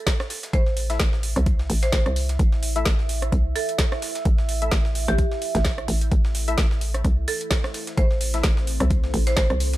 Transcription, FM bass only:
0.53 0.98 A1 medium
1.00 1.34 A1 medium
1.36 1.68 C2 medium
1.70 1.91 A1 loud
1.93 2.04 A1 loud
2.06 2.38 C2 medium
2.39 2.84 A1 loud
2.86 3.31 A1 medium
3.32 3.54 C2 medium
4.25 4.70 A1 loud
4.72 5.06 A1 loud
5.08 5.29 A1 loud
5.55 5.87 A1 loud
5.88 6.10 A1 loud
6.12 6.56 A1 loud
6.58 7.03 A1 loud
7.05 7.26 C2 medium
7.98 8.42 A1 medium
8.44 8.78 A1 medium
8.80 9.12 C2 loud
9.14 9.35 A1 loud
9.37 9.48 A1 medium
9.50 9.78 C2 loud

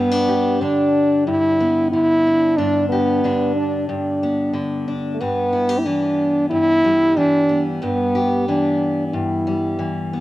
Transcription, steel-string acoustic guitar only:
0.00 1.27 G2 medium
0.00 1.60 G3 soft
0.00 0.11 B3 medium
0.11 0.61 D4 soft
0.28 2.92 G4 medium
0.61 1.92 D3 medium
0.61 2.25 D4 medium
1.27 2.58 G2 medium
1.60 4.23 B3 medium
1.93 3.23 D3 medium
2.27 2.54 D4 medium
2.58 3.88 G2 medium
2.58 3.23 D4 medium
2.92 5.52 G4 medium
3.24 4.52 D3 medium
3.24 4.87 D4 medium
3.89 5.20 G2 medium
4.23 5.21 B3 medium
4.53 5.19 D3 medium
4.88 5.16 D4 medium
5.21 6.50 G2 medium
5.21 5.86 B3 medium
5.53 5.69 E4 medium
5.69 7.82 G4 medium
5.86 7.15 E3 medium
5.86 7.48 B3 medium
6.51 7.78 G2 medium
6.84 9.46 G3 medium
7.17 7.78 E3 medium
7.49 7.81 B3 medium
7.82 9.12 G2 medium
7.82 8.47 B3 medium
8.15 10.20 G4 medium
8.48 9.78 E3 medium
8.48 10.12 B3 medium
9.13 10.20 G2 medium
9.47 10.20 G3 medium
9.79 10.20 E3 medium
10.13 10.20 B3 medium

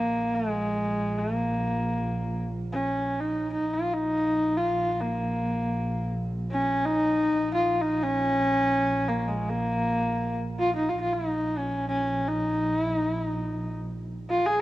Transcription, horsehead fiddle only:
0.00 0.36 A#3 medium
0.34 1.20 G#3 medium
1.18 2.42 A#3 medium
2.73 3.21 C#4 medium
3.20 3.52 D#4 medium
3.53 3.75 D#4 medium
3.73 3.95 F4 medium
3.93 4.59 D#4 medium
4.57 5.02 F4 medium
5.01 6.11 A#3 medium
6.51 6.87 C#4 medium
6.85 7.53 D#4 loud
7.54 7.83 F4 medium
7.81 8.04 D#4 medium
8.03 9.10 C#4 loud
9.08 9.29 A#3 medium
9.27 9.51 G#3 medium
9.49 10.38 A#3 medium
10.59 10.74 F4 medium
10.76 10.91 D#4 medium
10.89 10.99 F4 medium
11.01 11.14 F4 medium
11.13 11.60 D#4 medium
11.58 11.88 C#4 medium
11.88 12.29 C#4 medium
12.27 12.80 D#4 medium
12.80 12.94 E4 medium
12.94 13.10 D#4 medium
13.10 13.24 E4 medium
13.24 13.76 D#4 medium
14.30 14.47 F4 medium
14.46 14.61 G#4 medium

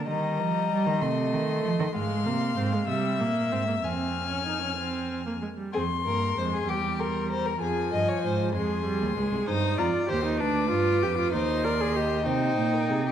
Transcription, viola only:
0.08 1.03 G3 medium
1.02 1.94 A3 medium
1.95 2.28 G#3 medium
2.26 2.58 A#3 medium
2.57 2.74 C4 medium
2.73 2.88 G#3 medium
2.88 3.21 G3 medium
3.20 3.54 A#3 medium
3.52 3.67 C4 medium
3.67 3.74 A#3 medium
3.83 4.30 C4 medium
4.31 4.46 C#4 soft
4.47 4.63 D#4 soft
4.63 4.78 C#4 soft
4.78 5.25 C4 medium
5.26 5.33 A#3 medium
5.42 5.48 G#3 soft
5.58 5.73 G3 soft
5.74 5.82 C4 medium
6.05 6.36 A#3 soft
6.37 6.67 G#3 medium
6.68 7.60 G3 medium
7.62 8.53 F3 medium
8.55 8.86 G#3 medium
8.86 9.17 G3 medium
9.17 9.49 G#3 medium
9.47 9.80 D#4 medium
9.78 10.08 F4 medium
10.09 10.24 G4 medium
10.25 10.42 D#4 medium
10.40 10.70 D4 medium
10.71 11.04 F4 medium
11.02 11.17 G4 medium
11.18 11.33 F4 medium
11.34 11.66 D#4 medium
11.64 11.82 A#4 medium
11.80 11.98 G#4 medium
11.96 12.26 G4 medium
12.27 13.12 D#4 medium

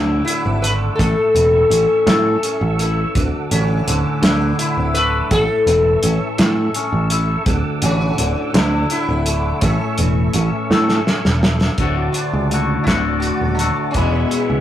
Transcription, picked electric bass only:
0.00 0.20 D2 medium
0.46 0.88 G#1 medium
0.99 1.14 A1 loud
1.35 1.64 E1 medium
1.70 1.85 A1 medium
2.07 2.35 A2 medium
2.61 3.04 A1 medium
3.15 3.30 D1 medium
3.51 3.80 A1 medium
3.88 4.02 D1 medium
4.22 4.51 D2 medium
4.77 5.20 D1 medium
5.31 5.45 A1 loud
5.66 5.95 E1 medium
6.04 6.18 A1 medium
6.39 6.68 A2 medium
6.92 7.35 A1 medium
7.46 7.61 D1 loud
7.82 8.11 A1 medium
8.18 8.33 D1 medium
8.54 8.83 D2 medium
9.08 9.51 D1 medium
9.62 9.77 A1 medium
9.99 10.27 E1 medium
10.34 10.49 A1 medium
10.71 10.99 A2 medium
11.25 11.68 E1 medium
11.78 12.07 D1 medium
12.33 12.76 C#2 medium
12.87 13.30 D1 medium
13.41 13.70 D#1 medium
13.95 14.24 E1 medium
14.50 14.61 C#2 medium

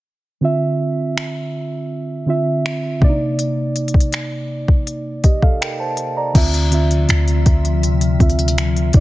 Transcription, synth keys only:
0.41 1.80 D3 medium
0.41 1.80 C4 medium
0.41 1.81 F4 medium
0.41 1.81 E5 medium
2.26 3.01 D3 medium
2.26 3.01 C4 medium
2.26 3.02 F4 medium
2.26 3.03 E5 medium
3.00 4.39 C3 medium
3.00 4.39 A#3 medium
3.00 3.09 D4 medium
3.00 4.41 D5 medium
3.09 4.43 D#4 medium
5.24 5.42 G4 soft
5.24 5.42 D#5 medium
5.43 5.60 A4 medium
5.43 5.60 F5 medium
5.61 5.79 A#4 medium
5.61 5.79 G5 medium
5.80 6.15 C5 medium
5.80 6.15 A5 medium
6.17 6.52 D5 soft
6.17 6.52 A#5 medium
6.34 6.69 D3 medium
6.34 6.69 C4 medium
6.34 6.70 F4 medium
6.34 6.71 E5 medium
6.70 8.09 D3 medium
6.70 8.10 C4 medium
6.70 8.10 F4 medium
6.70 8.11 E5 medium
8.19 8.93 D3 medium
8.19 8.94 C4 medium
8.19 8.95 F4 medium
8.19 8.95 E5 medium
8.93 9.00 C3 medium
8.93 9.00 A#3 medium
8.93 9.00 D#4 medium
8.93 9.00 D5 medium

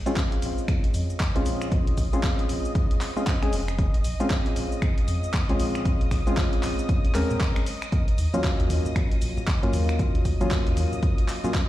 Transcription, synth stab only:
0.06 1.32 G#3 medium
0.06 1.32 C4 medium
0.06 1.32 C#4 medium
0.06 1.32 F4 loud
1.35 2.09 G#3 medium
1.35 2.09 C4 medium
1.35 2.09 C#4 medium
1.35 2.10 F4 loud
2.13 3.13 G#3 loud
2.13 3.13 C4 medium
2.13 3.13 C#4 medium
2.13 3.13 F4 loud
3.16 3.29 G#3 medium
3.16 3.29 C4 medium
3.16 3.29 C#4 medium
3.16 3.29 F4 medium
3.42 3.55 G#3 medium
3.42 3.55 C4 medium
3.42 3.55 C#4 medium
3.42 3.55 G#4 medium
4.20 5.46 G#3 medium
4.20 5.46 C4 medium
4.20 5.46 C#4 medium
4.20 5.46 F4 medium
5.49 6.23 G#3 medium
5.49 6.23 C4 medium
5.49 6.23 C#4 medium
5.49 6.23 F4 loud
6.27 7.13 G#3 medium
6.27 7.13 C4 medium
6.27 7.13 C#4 medium
6.27 7.13 F4 loud
7.15 7.65 G#3 medium
7.15 7.65 C4 medium
7.15 7.65 C#4 medium
7.15 7.65 A#4 loud
8.34 9.59 F#3 medium
8.34 9.59 A#3 medium
8.34 9.59 C#4 medium
8.34 9.60 F4 loud
9.63 10.37 F#3 loud
9.63 10.37 A#3 medium
9.63 10.37 C#4 medium
9.63 10.37 F4 loud
10.41 11.40 F#3 loud
10.41 11.40 A#3 medium
10.41 11.41 C#4 medium
10.41 11.41 F4 loud
11.44 11.57 F#3 medium
11.44 11.57 A#3 medium
11.44 11.57 C#4 medium
11.44 11.57 F4 medium

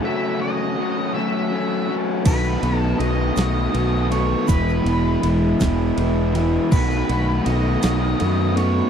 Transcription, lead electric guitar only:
0.05 0.41 E5 loud
0.41 1.14 D#5 loud
1.14 1.94 E5 medium
2.26 2.78 B4 medium
2.78 2.97 A4 medium
2.99 4.07 D#5 loud
4.11 4.46 C#5 medium
4.48 5.28 B4 medium
6.72 7.49 B4 medium
7.45 8.57 D#5 medium
8.57 8.90 C#5 medium

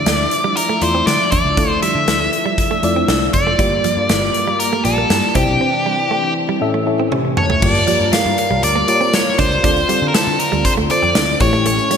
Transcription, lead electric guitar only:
0.00 0.61 D5 loud
0.57 0.83 A#4 medium
0.82 1.07 C5 medium
1.07 1.31 D5 medium
1.32 1.79 D5 medium
1.83 3.38 E5 loud
3.33 4.63 D5 loud
4.59 4.84 A#4 medium
4.85 5.35 A4 medium
5.36 6.32 G4 medium
7.38 7.63 C#5 medium
7.63 8.13 D5 loud
8.13 8.37 F5 loud
8.39 8.62 F5 medium
8.64 8.88 D5 loud
8.89 9.15 D5 medium
9.14 9.37 C#5 medium
9.39 10.08 C5 loud
10.08 10.14 A#4 medium
10.15 10.40 A4 medium
10.40 10.65 A#4 medium
10.66 10.72 C5 medium
10.91 11.41 D5 medium
11.41 11.65 C#5 loud
11.67 11.97 C#5 medium

